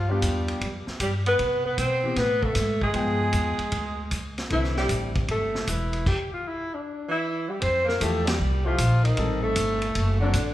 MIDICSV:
0, 0, Header, 1, 7, 480
1, 0, Start_track
1, 0, Key_signature, 0, "major"
1, 0, Tempo, 389105
1, 1712, Time_signature, 4, 2, 24, 8
1, 13000, End_track
2, 0, Start_track
2, 0, Title_t, "Alto saxophone"
2, 0, Program_c, 0, 65
2, 0, Note_on_c, 0, 65, 81
2, 139, Note_on_c, 0, 67, 83
2, 157, Note_off_c, 0, 65, 0
2, 962, Note_off_c, 0, 67, 0
2, 1242, Note_on_c, 0, 67, 77
2, 1384, Note_off_c, 0, 67, 0
2, 1582, Note_on_c, 0, 71, 86
2, 2015, Note_off_c, 0, 71, 0
2, 2045, Note_on_c, 0, 71, 76
2, 2188, Note_off_c, 0, 71, 0
2, 2210, Note_on_c, 0, 72, 86
2, 2694, Note_on_c, 0, 71, 89
2, 2713, Note_off_c, 0, 72, 0
2, 2998, Note_on_c, 0, 69, 89
2, 3017, Note_off_c, 0, 71, 0
2, 3478, Note_off_c, 0, 69, 0
2, 3494, Note_on_c, 0, 68, 99
2, 5358, Note_off_c, 0, 68, 0
2, 5583, Note_on_c, 0, 64, 83
2, 5870, Note_off_c, 0, 64, 0
2, 5895, Note_on_c, 0, 67, 83
2, 6334, Note_off_c, 0, 67, 0
2, 6557, Note_on_c, 0, 69, 86
2, 7022, Note_on_c, 0, 64, 76
2, 7040, Note_off_c, 0, 69, 0
2, 7490, Note_off_c, 0, 64, 0
2, 7502, Note_on_c, 0, 67, 85
2, 7790, Note_off_c, 0, 67, 0
2, 7818, Note_on_c, 0, 65, 69
2, 7991, Note_on_c, 0, 64, 76
2, 8010, Note_off_c, 0, 65, 0
2, 8320, Note_on_c, 0, 62, 66
2, 8338, Note_off_c, 0, 64, 0
2, 8767, Note_off_c, 0, 62, 0
2, 8775, Note_on_c, 0, 64, 75
2, 9259, Note_on_c, 0, 67, 70
2, 9278, Note_off_c, 0, 64, 0
2, 9407, Note_on_c, 0, 72, 87
2, 9425, Note_off_c, 0, 67, 0
2, 9719, Note_off_c, 0, 72, 0
2, 9727, Note_on_c, 0, 70, 75
2, 9894, Note_on_c, 0, 69, 80
2, 9912, Note_off_c, 0, 70, 0
2, 10206, Note_off_c, 0, 69, 0
2, 10215, Note_on_c, 0, 67, 84
2, 10694, Note_on_c, 0, 65, 82
2, 10713, Note_off_c, 0, 67, 0
2, 11165, Note_on_c, 0, 63, 79
2, 11184, Note_off_c, 0, 65, 0
2, 11622, Note_off_c, 0, 63, 0
2, 11630, Note_on_c, 0, 69, 92
2, 12542, Note_off_c, 0, 69, 0
2, 12607, Note_on_c, 0, 62, 86
2, 13000, Note_off_c, 0, 62, 0
2, 13000, End_track
3, 0, Start_track
3, 0, Title_t, "Grand piano"
3, 0, Program_c, 1, 0
3, 117, Note_on_c, 1, 65, 54
3, 125, Note_on_c, 1, 59, 51
3, 135, Note_on_c, 1, 62, 54
3, 140, Note_on_c, 1, 67, 60
3, 722, Note_off_c, 1, 65, 0
3, 726, Note_off_c, 1, 59, 0
3, 731, Note_off_c, 1, 62, 0
3, 733, Note_off_c, 1, 67, 0
3, 2504, Note_on_c, 1, 52, 57
3, 2509, Note_on_c, 1, 59, 50
3, 2523, Note_on_c, 1, 60, 52
3, 2528, Note_on_c, 1, 67, 62
3, 2652, Note_off_c, 1, 52, 0
3, 2655, Note_off_c, 1, 59, 0
3, 2662, Note_off_c, 1, 60, 0
3, 2664, Note_off_c, 1, 67, 0
3, 3619, Note_on_c, 1, 53, 53
3, 3624, Note_on_c, 1, 56, 47
3, 3627, Note_on_c, 1, 59, 50
3, 3641, Note_on_c, 1, 79, 55
3, 4365, Note_off_c, 1, 53, 0
3, 4367, Note_off_c, 1, 56, 0
3, 4369, Note_off_c, 1, 59, 0
3, 4376, Note_off_c, 1, 79, 0
3, 5547, Note_on_c, 1, 50, 55
3, 5562, Note_on_c, 1, 60, 49
3, 5564, Note_on_c, 1, 57, 50
3, 5576, Note_on_c, 1, 64, 62
3, 6897, Note_off_c, 1, 50, 0
3, 6905, Note_off_c, 1, 60, 0
3, 6906, Note_off_c, 1, 57, 0
3, 6912, Note_off_c, 1, 64, 0
3, 9872, Note_on_c, 1, 53, 67
3, 9884, Note_on_c, 1, 57, 59
3, 9892, Note_on_c, 1, 64, 62
3, 9896, Note_on_c, 1, 67, 71
3, 10163, Note_off_c, 1, 53, 0
3, 10169, Note_off_c, 1, 57, 0
3, 10173, Note_off_c, 1, 64, 0
3, 10175, Note_off_c, 1, 67, 0
3, 10679, Note_on_c, 1, 53, 66
3, 10687, Note_on_c, 1, 57, 58
3, 10693, Note_on_c, 1, 64, 60
3, 10703, Note_on_c, 1, 67, 67
3, 10821, Note_off_c, 1, 53, 0
3, 10825, Note_off_c, 1, 57, 0
3, 10828, Note_off_c, 1, 64, 0
3, 10833, Note_off_c, 1, 67, 0
3, 11315, Note_on_c, 1, 55, 54
3, 11319, Note_on_c, 1, 60, 52
3, 11330, Note_on_c, 1, 63, 52
3, 11339, Note_on_c, 1, 69, 66
3, 12051, Note_off_c, 1, 55, 0
3, 12053, Note_off_c, 1, 60, 0
3, 12058, Note_off_c, 1, 63, 0
3, 12063, Note_off_c, 1, 69, 0
3, 12609, Note_on_c, 1, 54, 58
3, 12619, Note_on_c, 1, 60, 52
3, 12625, Note_on_c, 1, 62, 54
3, 12629, Note_on_c, 1, 69, 60
3, 12744, Note_off_c, 1, 54, 0
3, 12749, Note_off_c, 1, 60, 0
3, 12752, Note_off_c, 1, 62, 0
3, 12754, Note_off_c, 1, 69, 0
3, 13000, End_track
4, 0, Start_track
4, 0, Title_t, "Tenor saxophone"
4, 0, Program_c, 2, 66
4, 0, Note_on_c, 2, 53, 65
4, 112, Note_on_c, 2, 55, 69
4, 130, Note_off_c, 2, 53, 0
4, 949, Note_off_c, 2, 55, 0
4, 1262, Note_on_c, 2, 55, 63
4, 1400, Note_off_c, 2, 55, 0
4, 1563, Note_on_c, 2, 59, 70
4, 2006, Note_off_c, 2, 59, 0
4, 2049, Note_on_c, 2, 59, 69
4, 2190, Note_off_c, 2, 59, 0
4, 2208, Note_on_c, 2, 60, 72
4, 2681, Note_on_c, 2, 59, 70
4, 2700, Note_off_c, 2, 60, 0
4, 3027, Note_on_c, 2, 57, 73
4, 3046, Note_off_c, 2, 59, 0
4, 3483, Note_off_c, 2, 57, 0
4, 3491, Note_on_c, 2, 56, 73
4, 5356, Note_off_c, 2, 56, 0
4, 5572, Note_on_c, 2, 52, 65
4, 5864, Note_off_c, 2, 52, 0
4, 5903, Note_on_c, 2, 55, 69
4, 6338, Note_off_c, 2, 55, 0
4, 6547, Note_on_c, 2, 57, 71
4, 7019, Note_on_c, 2, 52, 66
4, 7038, Note_off_c, 2, 57, 0
4, 7489, Note_off_c, 2, 52, 0
4, 8735, Note_on_c, 2, 52, 63
4, 9236, Note_on_c, 2, 55, 58
4, 9255, Note_off_c, 2, 52, 0
4, 9383, Note_on_c, 2, 60, 67
4, 9402, Note_off_c, 2, 55, 0
4, 9673, Note_off_c, 2, 60, 0
4, 9680, Note_on_c, 2, 58, 63
4, 9859, Note_on_c, 2, 57, 66
4, 9877, Note_off_c, 2, 58, 0
4, 10172, Note_off_c, 2, 57, 0
4, 10180, Note_on_c, 2, 55, 68
4, 10666, Note_on_c, 2, 53, 68
4, 10685, Note_off_c, 2, 55, 0
4, 11145, Note_on_c, 2, 51, 62
4, 11164, Note_off_c, 2, 53, 0
4, 11630, Note_off_c, 2, 51, 0
4, 11637, Note_on_c, 2, 57, 75
4, 12545, Note_off_c, 2, 57, 0
4, 12580, Note_on_c, 2, 50, 72
4, 13000, Note_off_c, 2, 50, 0
4, 13000, End_track
5, 0, Start_track
5, 0, Title_t, "Upright bass"
5, 0, Program_c, 3, 32
5, 0, Note_on_c, 3, 43, 70
5, 256, Note_off_c, 3, 43, 0
5, 273, Note_on_c, 3, 40, 73
5, 738, Note_off_c, 3, 40, 0
5, 758, Note_on_c, 3, 41, 67
5, 1054, Note_off_c, 3, 41, 0
5, 1232, Note_on_c, 3, 43, 72
5, 1698, Note_off_c, 3, 43, 0
5, 1717, Note_on_c, 3, 48, 70
5, 2181, Note_off_c, 3, 48, 0
5, 2192, Note_on_c, 3, 47, 76
5, 2659, Note_off_c, 3, 47, 0
5, 2669, Note_on_c, 3, 45, 68
5, 3137, Note_off_c, 3, 45, 0
5, 3147, Note_on_c, 3, 44, 79
5, 3617, Note_off_c, 3, 44, 0
5, 3625, Note_on_c, 3, 43, 71
5, 4096, Note_off_c, 3, 43, 0
5, 4108, Note_on_c, 3, 40, 82
5, 4411, Note_off_c, 3, 40, 0
5, 4592, Note_on_c, 3, 38, 68
5, 5060, Note_off_c, 3, 38, 0
5, 5076, Note_on_c, 3, 37, 76
5, 5543, Note_off_c, 3, 37, 0
5, 5559, Note_on_c, 3, 36, 73
5, 6024, Note_off_c, 3, 36, 0
5, 6036, Note_on_c, 3, 33, 79
5, 6502, Note_off_c, 3, 33, 0
5, 6516, Note_on_c, 3, 31, 73
5, 6983, Note_off_c, 3, 31, 0
5, 7001, Note_on_c, 3, 28, 76
5, 7465, Note_off_c, 3, 28, 0
5, 9402, Note_on_c, 3, 41, 73
5, 9865, Note_off_c, 3, 41, 0
5, 9879, Note_on_c, 3, 40, 81
5, 10343, Note_off_c, 3, 40, 0
5, 10357, Note_on_c, 3, 36, 73
5, 10822, Note_off_c, 3, 36, 0
5, 10839, Note_on_c, 3, 34, 86
5, 11302, Note_off_c, 3, 34, 0
5, 11316, Note_on_c, 3, 33, 80
5, 11781, Note_off_c, 3, 33, 0
5, 11798, Note_on_c, 3, 31, 86
5, 12261, Note_off_c, 3, 31, 0
5, 12277, Note_on_c, 3, 30, 78
5, 12740, Note_off_c, 3, 30, 0
5, 12756, Note_on_c, 3, 33, 78
5, 13000, Note_off_c, 3, 33, 0
5, 13000, End_track
6, 0, Start_track
6, 0, Title_t, "Muted upright bass strokes"
6, 1072, Note_on_c, 9, 29, 32
6, 1196, Note_off_c, 9, 29, 0
6, 4422, Note_on_c, 9, 29, 33
6, 4545, Note_off_c, 9, 29, 0
6, 13000, End_track
7, 0, Start_track
7, 0, Title_t, "Drums"
7, 273, Note_on_c, 9, 44, 45
7, 273, Note_on_c, 9, 51, 56
7, 274, Note_on_c, 9, 36, 18
7, 397, Note_off_c, 9, 44, 0
7, 397, Note_off_c, 9, 51, 0
7, 398, Note_off_c, 9, 36, 0
7, 594, Note_on_c, 9, 51, 38
7, 718, Note_off_c, 9, 51, 0
7, 756, Note_on_c, 9, 36, 18
7, 756, Note_on_c, 9, 51, 46
7, 879, Note_off_c, 9, 51, 0
7, 880, Note_off_c, 9, 36, 0
7, 1074, Note_on_c, 9, 38, 32
7, 1198, Note_off_c, 9, 38, 0
7, 1232, Note_on_c, 9, 44, 45
7, 1232, Note_on_c, 9, 51, 55
7, 1234, Note_on_c, 9, 36, 18
7, 1355, Note_off_c, 9, 44, 0
7, 1355, Note_off_c, 9, 51, 0
7, 1358, Note_off_c, 9, 36, 0
7, 1556, Note_on_c, 9, 51, 36
7, 1679, Note_off_c, 9, 51, 0
7, 1714, Note_on_c, 9, 51, 49
7, 1716, Note_on_c, 9, 36, 14
7, 1837, Note_off_c, 9, 51, 0
7, 1840, Note_off_c, 9, 36, 0
7, 2193, Note_on_c, 9, 44, 47
7, 2193, Note_on_c, 9, 51, 53
7, 2194, Note_on_c, 9, 36, 21
7, 2316, Note_off_c, 9, 44, 0
7, 2316, Note_off_c, 9, 51, 0
7, 2317, Note_off_c, 9, 36, 0
7, 2668, Note_on_c, 9, 51, 48
7, 2673, Note_on_c, 9, 36, 18
7, 2674, Note_on_c, 9, 38, 32
7, 2791, Note_off_c, 9, 51, 0
7, 2796, Note_off_c, 9, 36, 0
7, 2797, Note_off_c, 9, 38, 0
7, 2992, Note_on_c, 9, 36, 44
7, 3115, Note_off_c, 9, 36, 0
7, 3143, Note_on_c, 9, 44, 46
7, 3143, Note_on_c, 9, 51, 56
7, 3150, Note_on_c, 9, 36, 20
7, 3150, Note_on_c, 9, 38, 31
7, 3267, Note_off_c, 9, 44, 0
7, 3267, Note_off_c, 9, 51, 0
7, 3273, Note_off_c, 9, 36, 0
7, 3273, Note_off_c, 9, 38, 0
7, 3472, Note_on_c, 9, 36, 39
7, 3596, Note_off_c, 9, 36, 0
7, 3622, Note_on_c, 9, 51, 45
7, 3630, Note_on_c, 9, 36, 15
7, 3746, Note_off_c, 9, 51, 0
7, 3754, Note_off_c, 9, 36, 0
7, 4102, Note_on_c, 9, 44, 46
7, 4102, Note_on_c, 9, 51, 52
7, 4111, Note_on_c, 9, 36, 18
7, 4226, Note_off_c, 9, 44, 0
7, 4226, Note_off_c, 9, 51, 0
7, 4234, Note_off_c, 9, 36, 0
7, 4424, Note_on_c, 9, 51, 37
7, 4548, Note_off_c, 9, 51, 0
7, 4585, Note_on_c, 9, 51, 50
7, 4593, Note_on_c, 9, 36, 24
7, 4708, Note_off_c, 9, 51, 0
7, 4716, Note_off_c, 9, 36, 0
7, 5070, Note_on_c, 9, 44, 50
7, 5070, Note_on_c, 9, 51, 47
7, 5076, Note_on_c, 9, 36, 21
7, 5194, Note_off_c, 9, 44, 0
7, 5194, Note_off_c, 9, 51, 0
7, 5200, Note_off_c, 9, 36, 0
7, 5399, Note_on_c, 9, 51, 36
7, 5406, Note_on_c, 9, 38, 42
7, 5523, Note_off_c, 9, 51, 0
7, 5529, Note_off_c, 9, 38, 0
7, 5555, Note_on_c, 9, 51, 43
7, 5559, Note_on_c, 9, 36, 18
7, 5678, Note_off_c, 9, 51, 0
7, 5683, Note_off_c, 9, 36, 0
7, 5722, Note_on_c, 9, 38, 22
7, 5845, Note_off_c, 9, 38, 0
7, 5878, Note_on_c, 9, 38, 34
7, 6002, Note_off_c, 9, 38, 0
7, 6033, Note_on_c, 9, 44, 54
7, 6033, Note_on_c, 9, 51, 50
7, 6038, Note_on_c, 9, 36, 19
7, 6156, Note_off_c, 9, 44, 0
7, 6156, Note_off_c, 9, 51, 0
7, 6161, Note_off_c, 9, 36, 0
7, 6356, Note_on_c, 9, 51, 36
7, 6360, Note_on_c, 9, 36, 55
7, 6480, Note_off_c, 9, 51, 0
7, 6483, Note_off_c, 9, 36, 0
7, 6517, Note_on_c, 9, 51, 49
7, 6520, Note_on_c, 9, 36, 20
7, 6641, Note_off_c, 9, 51, 0
7, 6644, Note_off_c, 9, 36, 0
7, 6846, Note_on_c, 9, 38, 43
7, 6969, Note_off_c, 9, 38, 0
7, 6999, Note_on_c, 9, 44, 48
7, 6999, Note_on_c, 9, 51, 52
7, 7001, Note_on_c, 9, 36, 19
7, 7122, Note_off_c, 9, 44, 0
7, 7122, Note_off_c, 9, 51, 0
7, 7124, Note_off_c, 9, 36, 0
7, 7314, Note_on_c, 9, 51, 36
7, 7437, Note_off_c, 9, 51, 0
7, 7480, Note_on_c, 9, 36, 63
7, 7482, Note_on_c, 9, 49, 53
7, 7604, Note_off_c, 9, 36, 0
7, 7605, Note_off_c, 9, 49, 0
7, 9395, Note_on_c, 9, 51, 50
7, 9401, Note_on_c, 9, 36, 21
7, 9518, Note_off_c, 9, 51, 0
7, 9525, Note_off_c, 9, 36, 0
7, 9731, Note_on_c, 9, 38, 31
7, 9854, Note_off_c, 9, 38, 0
7, 9881, Note_on_c, 9, 44, 49
7, 9881, Note_on_c, 9, 51, 64
7, 9882, Note_on_c, 9, 36, 17
7, 10004, Note_off_c, 9, 44, 0
7, 10004, Note_off_c, 9, 51, 0
7, 10005, Note_off_c, 9, 36, 0
7, 10203, Note_on_c, 9, 51, 66
7, 10210, Note_on_c, 9, 38, 72
7, 10327, Note_off_c, 9, 51, 0
7, 10333, Note_off_c, 9, 38, 0
7, 10835, Note_on_c, 9, 44, 49
7, 10835, Note_on_c, 9, 51, 64
7, 10841, Note_on_c, 9, 36, 23
7, 10958, Note_off_c, 9, 44, 0
7, 10958, Note_off_c, 9, 51, 0
7, 10964, Note_off_c, 9, 36, 0
7, 11161, Note_on_c, 9, 51, 42
7, 11285, Note_off_c, 9, 51, 0
7, 11311, Note_on_c, 9, 51, 51
7, 11320, Note_on_c, 9, 36, 21
7, 11435, Note_off_c, 9, 51, 0
7, 11443, Note_off_c, 9, 36, 0
7, 11789, Note_on_c, 9, 44, 50
7, 11789, Note_on_c, 9, 51, 66
7, 11798, Note_on_c, 9, 36, 19
7, 11912, Note_off_c, 9, 44, 0
7, 11912, Note_off_c, 9, 51, 0
7, 11922, Note_off_c, 9, 36, 0
7, 12110, Note_on_c, 9, 51, 42
7, 12233, Note_off_c, 9, 51, 0
7, 12275, Note_on_c, 9, 51, 59
7, 12279, Note_on_c, 9, 36, 18
7, 12399, Note_off_c, 9, 51, 0
7, 12403, Note_off_c, 9, 36, 0
7, 12749, Note_on_c, 9, 44, 56
7, 12749, Note_on_c, 9, 51, 59
7, 12757, Note_on_c, 9, 36, 21
7, 12872, Note_off_c, 9, 44, 0
7, 12872, Note_off_c, 9, 51, 0
7, 12881, Note_off_c, 9, 36, 0
7, 13000, End_track
0, 0, End_of_file